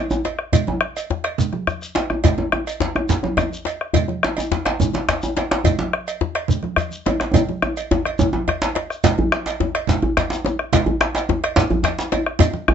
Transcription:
0.10 high conga, djembe tone, shekere
0.25 bombo rim, cowbell, djembe slap, shekere
0.39 bombo rim
0.53 bombo low, cowbell, high conga, low conga, djembe bass, shekere
0.67 high conga, djembe tone
0.81 bombo rim, djembe slap, high conga
0.97 cowbell, djembe slap, shekere
1.10 djembe slap, high conga, djembe bass
1.24 bombo rim, cowbell, djembe slap
1.38 bombo rim, bombo low, high conga, low conga, shekere
1.53 bombo rim, djembe slap, high conga, djembe tone
1.67 bombo rim, djembe slap, djembe bass, shekere
1.82 bombo rim, shekere
1.95 bombo rim, cowbell, djembe slap, shekere
2.10 bombo rim, djembe slap, djembe tone, high conga
2.24 bombo low, cowbell, djembe slap, djembe bass, low conga, shekere
2.38 djembe tone, high conga
2.52 bombo rim, djembe tone
2.67 bombo rim, cowbell, shekere
2.80 djembe slap, high conga, djembe bass
2.96 bombo rim, djembe tone
3.09 bombo low, djembe slap, high conga, low conga, shekere
3.23 bombo rim, djembe tone, high conga
3.37 bombo rim, cowbell, djembe slap, djembe tone, djembe bass, shekere
3.52 high conga, shekere
3.65 bombo rim, cowbell, djembe slap, shekere
3.81 bombo rim
3.94 bombo low, cowbell, djembe bass, low conga, shekere
4.08 djembe tone, high conga
4.23 bombo rim, djembe slap
4.37 bombo rim, cowbell, djembe tone, shekere
4.52 djembe slap, high conga, djembe bass
4.65 bombo rim, cowbell, djembe slap
4.80 bombo low, high conga, djembe tone, low conga, shekere
4.93 bombo rim, djembe slap, djembe tone, high conga
5.09 bombo rim, cowbell, djembe slap, djembe bass, shekere
5.22 high conga, djembe tone, shekere
5.37 bombo rim, cowbell, djembe slap, shekere
5.51 bombo rim, djembe slap
5.64 bombo low, cowbell, djembe tone, djembe bass, low conga, shekere
5.79 djembe slap, high conga
5.93 bombo rim
6.07 bombo rim, cowbell, shekere
6.21 djembe slap, high conga, djembe bass
6.35 bombo rim, cowbell
6.48 bombo low, djembe slap, high conga, low conga, shekere
6.63 bombo rim, high conga, djembe tone
6.76 bombo rim, cowbell, djembe slap, djembe bass, shekere
6.91 high conga, shekere
7.06 bombo rim, cowbell, djembe slap, djembe tone, shekere
7.20 bombo rim, djembe slap
7.34 bombo rim, bombo low, cowbell, djembe slap, high conga, djembe tone, low conga, djembe bass, shekere
7.49 high conga, djembe tone
7.62 bombo rim, djembe tone
7.77 cowbell, high conga, shekere
7.91 djembe slap, djembe tone, djembe bass, shekere
8.05 bombo rim, cowbell, high conga
8.19 bombo low, djembe tone, low conga, shekere
8.33 djembe slap, djembe tone, high conga
8.47 bombo rim, cowbell, djembe slap, high conga, djembe bass
8.62 bombo rim, djembe slap, shekere
8.75 cowbell, djembe slap, high conga
8.90 bombo rim, shekere
9.04 bombo low, cowbell, djembe slap, low conga, djembe bass, shekere
9.18 high conga, djembe tone, djembe bass
9.32 bombo rim, djembe slap
9.46 bombo rim, cowbell, djembe slap, shekere
9.60 djembe slap, high conga, djembe tone, djembe bass
9.75 bombo rim, cowbell
9.87 bombo low, djembe slap, high conga, low conga, shekere
10.02 bombo rim, high conga, djembe tone, djembe bass
10.17 bombo rim, cowbell, djembe slap, djembe bass, shekere
10.30 djembe slap, high conga, shekere
10.45 bombo rim, djembe slap, djembe tone, shekere
10.59 bombo rim
10.73 bombo low, cowbell, djembe slap, low conga, djembe bass, shekere
10.86 high conga, djembe tone, djembe bass
11.01 bombo rim, djembe slap
11.15 bombo rim, cowbell, djembe slap, shekere
11.29 djembe slap, djembe tone, high conga, djembe bass
11.44 bombo rim, cowbell
11.56 bombo low, djembe slap, high conga, low conga, shekere
11.70 bombo rim, djembe tone, high conga, djembe bass
11.83 bombo rim, cowbell, djembe slap, djembe bass, shekere
11.98 djembe slap, high conga, shekere
12.12 bombo rim, cowbell, djembe slap, djembe tone, shekere
12.26 bombo rim
12.39 bombo low, cowbell, low conga, djembe bass, shekere
12.53 djembe tone, high conga
12.68 bombo rim, djembe bass

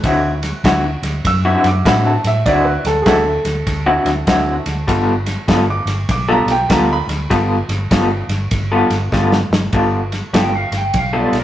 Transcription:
Already playing: B4
0.04 D2 D3 C4 E4 F#4, kick, snare, ride
0.43 snare, ride
0.64 D2 D3 C4 E4 F#4, kick, snare, ride
0.84 muted clean electric guitar stroke
1.03 D2, snare, ride
1.24 F#2 E6, kick, snare, ride
1.45 D3 C4 E4 F#4
1.64 F#2 D6, snare, ride
1.85 A2 D3 C4 E4 F#4 B5, kick, snare, ride
2.07 A5
2.24 A2 E5, snare, ride
2.45 D2 D3 C4 E4 F#4 D5, kick, snare, ride
2.65 B4
2.85 D2 A4, snare, ride
3.02 D2 G#4, ride
3.06 D3 C4 E4 F#4 A4, kick, snare
3.26 muted clean electric guitar stroke
3.45 D2, snare, ride
3.67 D2, kick, snare, ride
3.86 D3 C4 E4 F#4
4.05 D2, snare, ride
4.27 D3 C4 E4 F#4, kick, snare, ride
4.66 D2, snare, ride
4.88 G1 G3 B3 F4 A4, kick, snare, ride
5.26 snare, ride
5.48 G1 G3 B3 F4 A4, kick, snare, ride
5.68 D6, muted clean electric guitar stroke
5.85 G1, snare, ride
6.08 B1 D6, kick, snare, ride
6.29 G3 B3 F4 A4 A#5
6.46 B1, snare, ride
6.51 G5
6.69 D2 G3 B3 F4 A4 A#5, kick, snare, ride
6.93 B5
7.08 D2, snare, ride
7.30 G1 G3 B3 F4 A4, kick, snare, ride
7.68 G1, snare, ride
7.91 G1 G3 B3 F4 A4, kick, snare, ride
8.28 G1, snare, ride
8.51 G1, kick, snare, ride
8.72 G3 B3 F4 A4
8.90 G1, snare, ride
9.12 G1 G3 B3 F4 A4, kick, snare
9.32 snare
9.50 G1, snare
9.73 G1 G3 B3 F4 A4, kick, ride
10.12 snare, ride
10.33 G1 G3 B3 F4 A4 G5, snare, ride
10.53 F5, muted clean electric guitar stroke
10.71 G1, snare, ride
10.78 G5
10.94 B1, kick, snare, ride
10.98 F5
11.13 G3 B3 F4 A4
11.19 D5
11.32 B1, snare, ride
11.39 A#4

